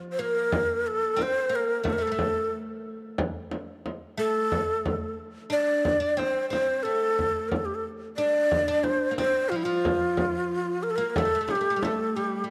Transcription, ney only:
0, 0, Header, 1, 2, 480
1, 0, Start_track
1, 0, Tempo, 665188
1, 1339, Time_signature, 4, 2, 24, 8
1, 9021, End_track
2, 0, Start_track
2, 0, Title_t, "Ney"
2, 0, Program_c, 0, 77
2, 89, Note_on_c, 0, 72, 57
2, 144, Note_on_c, 0, 70, 76
2, 154, Note_off_c, 0, 72, 0
2, 627, Note_on_c, 0, 69, 79
2, 638, Note_off_c, 0, 70, 0
2, 882, Note_on_c, 0, 72, 88
2, 893, Note_off_c, 0, 69, 0
2, 1121, Note_on_c, 0, 70, 77
2, 1132, Note_off_c, 0, 72, 0
2, 1368, Note_on_c, 0, 69, 74
2, 1379, Note_off_c, 0, 70, 0
2, 1391, Note_on_c, 0, 70, 62
2, 1402, Note_off_c, 0, 69, 0
2, 1458, Note_on_c, 0, 69, 73
2, 1468, Note_off_c, 0, 70, 0
2, 1828, Note_off_c, 0, 69, 0
2, 3023, Note_on_c, 0, 69, 90
2, 3712, Note_off_c, 0, 69, 0
2, 3985, Note_on_c, 0, 74, 89
2, 4461, Note_on_c, 0, 72, 78
2, 4472, Note_off_c, 0, 74, 0
2, 4686, Note_off_c, 0, 72, 0
2, 4690, Note_on_c, 0, 72, 77
2, 4929, Note_on_c, 0, 69, 66
2, 4940, Note_off_c, 0, 72, 0
2, 5401, Note_on_c, 0, 70, 59
2, 5412, Note_off_c, 0, 69, 0
2, 5457, Note_on_c, 0, 69, 59
2, 5468, Note_off_c, 0, 70, 0
2, 5522, Note_on_c, 0, 67, 59
2, 5533, Note_off_c, 0, 69, 0
2, 5589, Note_on_c, 0, 69, 56
2, 5600, Note_off_c, 0, 67, 0
2, 5656, Note_off_c, 0, 69, 0
2, 5896, Note_on_c, 0, 74, 92
2, 6376, Note_on_c, 0, 72, 84
2, 6387, Note_off_c, 0, 74, 0
2, 6616, Note_off_c, 0, 72, 0
2, 6621, Note_on_c, 0, 72, 85
2, 6849, Note_on_c, 0, 65, 76
2, 6860, Note_off_c, 0, 72, 0
2, 6899, Note_on_c, 0, 64, 69
2, 6910, Note_off_c, 0, 65, 0
2, 6954, Note_on_c, 0, 65, 81
2, 6965, Note_off_c, 0, 64, 0
2, 7815, Note_on_c, 0, 70, 74
2, 7826, Note_off_c, 0, 65, 0
2, 7868, Note_on_c, 0, 69, 65
2, 7879, Note_off_c, 0, 70, 0
2, 7910, Note_on_c, 0, 70, 76
2, 7921, Note_off_c, 0, 69, 0
2, 8007, Note_off_c, 0, 70, 0
2, 8007, Note_on_c, 0, 70, 59
2, 8056, Note_on_c, 0, 69, 81
2, 8066, Note_off_c, 0, 70, 0
2, 8303, Note_on_c, 0, 67, 72
2, 8313, Note_off_c, 0, 69, 0
2, 8538, Note_on_c, 0, 69, 77
2, 8549, Note_off_c, 0, 67, 0
2, 8773, Note_on_c, 0, 67, 70
2, 8784, Note_off_c, 0, 69, 0
2, 9011, Note_off_c, 0, 67, 0
2, 9021, End_track
0, 0, End_of_file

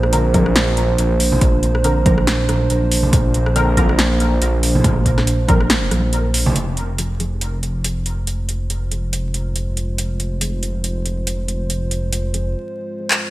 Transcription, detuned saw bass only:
0, 0, Header, 1, 2, 480
1, 0, Start_track
1, 0, Tempo, 428571
1, 1584, Time_signature, 4, 2, 24, 8
1, 14898, End_track
2, 0, Start_track
2, 0, Title_t, "Detuned saw bass"
2, 0, Program_c, 0, 39
2, 0, Note_on_c, 0, 34, 93
2, 1085, Note_off_c, 0, 34, 0
2, 1103, Note_on_c, 0, 34, 93
2, 1566, Note_off_c, 0, 34, 0
2, 1584, Note_on_c, 0, 34, 87
2, 3007, Note_off_c, 0, 34, 0
2, 3025, Note_on_c, 0, 34, 90
2, 3487, Note_off_c, 0, 34, 0
2, 3504, Note_on_c, 0, 34, 93
2, 4927, Note_off_c, 0, 34, 0
2, 4942, Note_on_c, 0, 34, 98
2, 5406, Note_off_c, 0, 34, 0
2, 5423, Note_on_c, 0, 34, 94
2, 6127, Note_off_c, 0, 34, 0
2, 6143, Note_on_c, 0, 34, 93
2, 6606, Note_off_c, 0, 34, 0
2, 6620, Note_on_c, 0, 34, 105
2, 7325, Note_off_c, 0, 34, 0
2, 7341, Note_on_c, 0, 29, 80
2, 14063, Note_off_c, 0, 29, 0
2, 14898, End_track
0, 0, End_of_file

